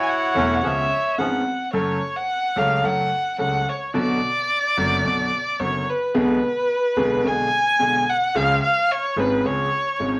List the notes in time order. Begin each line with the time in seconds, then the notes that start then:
Already playing: E4 F#4 C#5
0.02 G#5
0.09 F#5
0.35 E1 E2 E3 F#3 A3 C#4 F#4
0.63 C#2 C#3 F3 B3 C#4 G#4 E5
1.18 G#1 G#2 F3 B3 C#4 G#4 F#5
1.73 F#1 F#2 F#3 A3 C#4 A4 C#5
2.16 F#5
2.56 C#2 C#3 F#3 A3 C#4 A4 F5
2.83 F#1 F#2 F#3 A3 C#4 A4 F#5
3.38 C#2 C#3 F#3 A3 C#4 A4 F#5
3.69 C#5
3.94 B1 B2 D3 F#3 B3 F#4 D5
4.77 F#1 F#2 D3 F#3 B3 F#4
5.05 B1 B2 D3 F#3 B3 F#4
5.59 F#1 F#2 D3 F#3 B3 F#4 C#5
5.90 B4
6.14 B1 B2 D3 G#3 B3 G#4 B4
6.97 B1 B2 D3 G#3 B3 G#4
7.23 B1 B2 D3 G#3 B3 G#4 G#5
7.79 B1 B2 D3 G#3 B3 G#4
8.09 F#5
8.35 C#2 C#3 F3 G#3 C#4 G#4 F5
8.63 F5
8.91 C#5
9.16 G#1 G#2 F3 G#3 C#4 G#4 B4
9.44 C#2 C#3 F3 G#3 C#4 G#4 C#5
9.99 G#1 G#2 F3 G#3 C#4 G#4